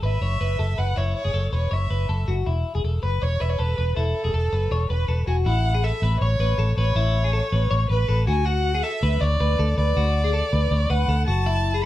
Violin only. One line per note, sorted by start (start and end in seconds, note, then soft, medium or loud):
0.03 0.80 E5 medium
0.79 0.99 F#5 medium
0.97 1.15 C#5 medium
1.16 1.50 C#5 medium
1.53 1.74 C#5 medium
1.73 2.28 E5 medium
3.04 3.24 B4 medium
3.23 3.43 C#5 loud
3.41 3.51 E5 medium
3.49 3.61 C#5 medium
3.59 3.96 B4 loud
3.96 4.86 A4 medium
4.90 5.25 B4 medium
5.27 5.35 G#5 medium
5.45 5.85 F#5 medium
5.84 6.19 E5 medium
6.20 6.73 C#5 medium
6.78 7.86 C#5 medium
7.90 8.25 B4 medium
8.28 8.47 G#5 medium
8.45 8.84 F#5 loud
8.83 9.22 E5 loud
9.21 9.77 D5 loud
9.78 10.92 D5 loud
10.90 11.26 F#5 loud
11.27 11.79 A5 loud